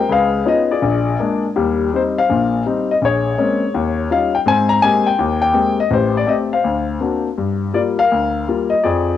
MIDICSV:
0, 0, Header, 1, 2, 480
1, 0, Start_track
1, 0, Key_signature, -3, "major"
1, 0, Tempo, 364299
1, 136, Time_signature, 4, 2, 24, 8
1, 12086, End_track
2, 0, Start_track
2, 0, Title_t, "Grand piano"
2, 0, Program_c, 0, 0
2, 117, Note_on_c, 0, 37, 68
2, 150, Note_on_c, 0, 68, 59
2, 152, Note_on_c, 0, 71, 64
2, 164, Note_on_c, 0, 77, 87
2, 540, Note_off_c, 0, 37, 0
2, 597, Note_off_c, 0, 77, 0
2, 600, Note_on_c, 0, 61, 53
2, 603, Note_on_c, 0, 63, 50
2, 605, Note_on_c, 0, 59, 54
2, 613, Note_on_c, 0, 65, 56
2, 640, Note_on_c, 0, 75, 84
2, 926, Note_off_c, 0, 65, 0
2, 929, Note_off_c, 0, 68, 0
2, 938, Note_off_c, 0, 61, 0
2, 939, Note_off_c, 0, 63, 0
2, 940, Note_off_c, 0, 59, 0
2, 943, Note_on_c, 0, 74, 71
2, 946, Note_on_c, 0, 65, 51
2, 949, Note_on_c, 0, 68, 53
2, 950, Note_off_c, 0, 75, 0
2, 1054, Note_off_c, 0, 71, 0
2, 1085, Note_on_c, 0, 34, 71
2, 1514, Note_off_c, 0, 34, 0
2, 1572, Note_on_c, 0, 56, 51
2, 1576, Note_on_c, 0, 58, 48
2, 1587, Note_on_c, 0, 62, 52
2, 1860, Note_off_c, 0, 74, 0
2, 1862, Note_off_c, 0, 65, 0
2, 1863, Note_off_c, 0, 68, 0
2, 1915, Note_off_c, 0, 56, 0
2, 1917, Note_off_c, 0, 58, 0
2, 1922, Note_off_c, 0, 62, 0
2, 2055, Note_on_c, 0, 39, 62
2, 2057, Note_on_c, 0, 55, 61
2, 2483, Note_off_c, 0, 39, 0
2, 2484, Note_off_c, 0, 55, 0
2, 2548, Note_on_c, 0, 55, 50
2, 2550, Note_on_c, 0, 60, 44
2, 2559, Note_on_c, 0, 63, 50
2, 2584, Note_on_c, 0, 72, 69
2, 2652, Note_off_c, 0, 72, 0
2, 2877, Note_on_c, 0, 72, 53
2, 2878, Note_on_c, 0, 77, 86
2, 2883, Note_off_c, 0, 55, 0
2, 2884, Note_off_c, 0, 60, 0
2, 2889, Note_off_c, 0, 63, 0
2, 3025, Note_on_c, 0, 46, 66
2, 3026, Note_on_c, 0, 34, 63
2, 3445, Note_off_c, 0, 46, 0
2, 3446, Note_off_c, 0, 34, 0
2, 3476, Note_off_c, 0, 77, 0
2, 3505, Note_on_c, 0, 55, 47
2, 3511, Note_on_c, 0, 60, 43
2, 3512, Note_on_c, 0, 63, 49
2, 3776, Note_off_c, 0, 72, 0
2, 3836, Note_off_c, 0, 55, 0
2, 3837, Note_on_c, 0, 75, 75
2, 3839, Note_off_c, 0, 60, 0
2, 3840, Note_off_c, 0, 63, 0
2, 3903, Note_off_c, 0, 75, 0
2, 3976, Note_on_c, 0, 34, 64
2, 4016, Note_on_c, 0, 73, 79
2, 4021, Note_on_c, 0, 68, 50
2, 4391, Note_off_c, 0, 34, 0
2, 4450, Note_on_c, 0, 56, 51
2, 4454, Note_on_c, 0, 58, 47
2, 4457, Note_on_c, 0, 60, 47
2, 4459, Note_on_c, 0, 61, 56
2, 4781, Note_off_c, 0, 56, 0
2, 4782, Note_off_c, 0, 58, 0
2, 4784, Note_off_c, 0, 60, 0
2, 4785, Note_off_c, 0, 61, 0
2, 4899, Note_off_c, 0, 68, 0
2, 4933, Note_on_c, 0, 39, 66
2, 5344, Note_off_c, 0, 39, 0
2, 5403, Note_on_c, 0, 55, 49
2, 5410, Note_on_c, 0, 61, 43
2, 5410, Note_on_c, 0, 65, 51
2, 5415, Note_on_c, 0, 63, 46
2, 5429, Note_on_c, 0, 77, 81
2, 5464, Note_off_c, 0, 73, 0
2, 5727, Note_on_c, 0, 79, 84
2, 5730, Note_off_c, 0, 55, 0
2, 5733, Note_off_c, 0, 61, 0
2, 5733, Note_off_c, 0, 65, 0
2, 5735, Note_off_c, 0, 77, 0
2, 5736, Note_off_c, 0, 63, 0
2, 5793, Note_off_c, 0, 79, 0
2, 5873, Note_on_c, 0, 44, 66
2, 5879, Note_on_c, 0, 60, 62
2, 5887, Note_on_c, 0, 72, 68
2, 5903, Note_on_c, 0, 80, 95
2, 6180, Note_off_c, 0, 80, 0
2, 6182, Note_on_c, 0, 82, 95
2, 6289, Note_off_c, 0, 44, 0
2, 6292, Note_off_c, 0, 60, 0
2, 6343, Note_off_c, 0, 82, 0
2, 6356, Note_on_c, 0, 80, 97
2, 6365, Note_on_c, 0, 56, 54
2, 6366, Note_on_c, 0, 58, 48
2, 6368, Note_on_c, 0, 60, 48
2, 6372, Note_on_c, 0, 67, 59
2, 6674, Note_on_c, 0, 79, 87
2, 6677, Note_off_c, 0, 80, 0
2, 6689, Note_off_c, 0, 56, 0
2, 6690, Note_off_c, 0, 58, 0
2, 6691, Note_off_c, 0, 60, 0
2, 6693, Note_off_c, 0, 67, 0
2, 6789, Note_off_c, 0, 72, 0
2, 6836, Note_on_c, 0, 39, 69
2, 7116, Note_off_c, 0, 79, 0
2, 7135, Note_on_c, 0, 79, 98
2, 7254, Note_off_c, 0, 39, 0
2, 7289, Note_on_c, 0, 56, 53
2, 7292, Note_on_c, 0, 58, 45
2, 7294, Note_on_c, 0, 60, 45
2, 7299, Note_on_c, 0, 67, 51
2, 7589, Note_off_c, 0, 79, 0
2, 7633, Note_off_c, 0, 56, 0
2, 7634, Note_off_c, 0, 58, 0
2, 7635, Note_off_c, 0, 60, 0
2, 7638, Note_off_c, 0, 67, 0
2, 7641, Note_on_c, 0, 75, 86
2, 7777, Note_on_c, 0, 45, 62
2, 7783, Note_on_c, 0, 33, 67
2, 7795, Note_off_c, 0, 75, 0
2, 7812, Note_on_c, 0, 67, 56
2, 7820, Note_on_c, 0, 72, 78
2, 8102, Note_off_c, 0, 72, 0
2, 8132, Note_on_c, 0, 74, 75
2, 8205, Note_off_c, 0, 45, 0
2, 8208, Note_off_c, 0, 33, 0
2, 8243, Note_off_c, 0, 67, 0
2, 8250, Note_on_c, 0, 57, 49
2, 8258, Note_on_c, 0, 60, 44
2, 8263, Note_on_c, 0, 67, 54
2, 8281, Note_off_c, 0, 74, 0
2, 8283, Note_on_c, 0, 75, 79
2, 8353, Note_off_c, 0, 75, 0
2, 8597, Note_off_c, 0, 57, 0
2, 8601, Note_off_c, 0, 60, 0
2, 8602, Note_on_c, 0, 77, 72
2, 8603, Note_off_c, 0, 67, 0
2, 8624, Note_on_c, 0, 72, 52
2, 8751, Note_on_c, 0, 38, 58
2, 9053, Note_off_c, 0, 77, 0
2, 9181, Note_off_c, 0, 38, 0
2, 9232, Note_on_c, 0, 58, 45
2, 9233, Note_on_c, 0, 60, 41
2, 9234, Note_on_c, 0, 62, 41
2, 9244, Note_on_c, 0, 66, 47
2, 9533, Note_off_c, 0, 72, 0
2, 9577, Note_off_c, 0, 58, 0
2, 9577, Note_off_c, 0, 60, 0
2, 9578, Note_off_c, 0, 62, 0
2, 9583, Note_off_c, 0, 66, 0
2, 9719, Note_on_c, 0, 43, 59
2, 10145, Note_off_c, 0, 43, 0
2, 10189, Note_on_c, 0, 55, 53
2, 10200, Note_on_c, 0, 74, 67
2, 10204, Note_on_c, 0, 58, 46
2, 10206, Note_on_c, 0, 65, 53
2, 10273, Note_off_c, 0, 74, 0
2, 10525, Note_on_c, 0, 77, 92
2, 10535, Note_off_c, 0, 55, 0
2, 10542, Note_off_c, 0, 58, 0
2, 10543, Note_off_c, 0, 65, 0
2, 10566, Note_on_c, 0, 70, 53
2, 10692, Note_on_c, 0, 38, 59
2, 11111, Note_off_c, 0, 38, 0
2, 11132, Note_off_c, 0, 77, 0
2, 11172, Note_on_c, 0, 55, 46
2, 11180, Note_on_c, 0, 58, 44
2, 11183, Note_on_c, 0, 65, 52
2, 11453, Note_off_c, 0, 70, 0
2, 11459, Note_on_c, 0, 75, 74
2, 11501, Note_off_c, 0, 55, 0
2, 11505, Note_off_c, 0, 58, 0
2, 11507, Note_off_c, 0, 65, 0
2, 11630, Note_off_c, 0, 75, 0
2, 11640, Note_on_c, 0, 74, 70
2, 11647, Note_on_c, 0, 53, 59
2, 11654, Note_on_c, 0, 41, 62
2, 11662, Note_on_c, 0, 68, 57
2, 12063, Note_off_c, 0, 53, 0
2, 12066, Note_off_c, 0, 41, 0
2, 12086, Note_off_c, 0, 68, 0
2, 12086, Note_off_c, 0, 74, 0
2, 12086, End_track
0, 0, End_of_file